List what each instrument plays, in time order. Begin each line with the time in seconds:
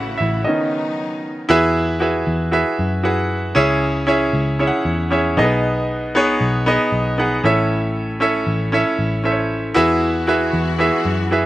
Already playing: picked electric bass A1, string section C#3 E3 A3 E4, grand piano E3 A3 C#4 E4 F#4 E5 F#5
0.18 picked electric bass A1, grand piano E4 E5
0.45 grand piano D#3 B3 C#4 D#4 D#5, string section F#3 B3 D#4
1.49 picked electric bass E2, grand piano E3 E4 F#4 G#4 B4 E5
2.00 grand piano E4 F#4 G#4 B4 E5
2.27 picked electric bass E2
2.51 grand piano E4 F#4 G#4 B4 E5
2.79 picked electric bass F#2
3.03 grand piano E4 F#4 G#4 B4 F#5
3.55 picked electric bass C#2, grand piano C#3 C#4 E4 G#4 C#5 E5
4.07 grand piano C#4 E4 G#4 C#5 E5
4.33 picked electric bass C#2
4.59 grand piano C#4 E4 G#4 C#5 E5
4.67 grand piano F#5
4.85 picked electric bass E2
5.11 grand piano C#4 E4 G#4 C#5 E5
5.37 picked electric bass B1, grand piano B2 B3 D#4 G#4 A4 D#5
5.44 grand piano B4
6.15 grand piano B3 D#4 G#4 B4 C#5
6.41 picked electric bass B1
6.66 grand piano B3 D#4 G#4 B4 D#5
6.92 picked electric bass B1
7.18 grand piano B3 D#4 G#4 B4 F#5
7.44 picked electric bass A1, grand piano A2 C#4 E4 A4 C#5 E5
8.20 grand piano C#4 E4 A4 C#5 E5
8.47 picked electric bass A1
8.72 grand piano C#4 E4 A4 C#5 E5
8.99 picked electric bass A1
9.24 grand piano C#4 E4 A4 C5 E5
9.32 grand piano C#5
9.74 picked electric bass E2, grand piano E3 E4 F#4 G#4 B4 E5, string section E3 G#3 B3 F#4
10.27 grand piano E4 F#4 G#4 B4 E5
10.53 picked electric bass E2
10.78 grand piano E4 F#4 G#4 B4 E5
11.05 picked electric bass F#2
11.31 grand piano E4 F#4 G#4 B4 E5